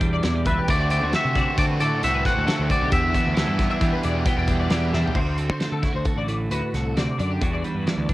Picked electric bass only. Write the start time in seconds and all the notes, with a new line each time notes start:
Already playing: E2
0.24 E2
0.46 C#2
0.69 D2
1.03 D2
1.25 C3
1.58 D3
1.80 D3
2.04 C2
2.37 D2
2.59 D2
2.81 B1
2.92 E2
3.27 D2
3.48 G2
3.81 E3
4.04 E2
4.37 E2
4.71 E2
4.94 E2
5.16 D2
5.50 D3
5.72 D3
5.94 D2
6.16 A1
6.50 D2
6.74 C2
6.97 D2
7.20 F#2
7.42 E2
7.75 G2
7.97 D2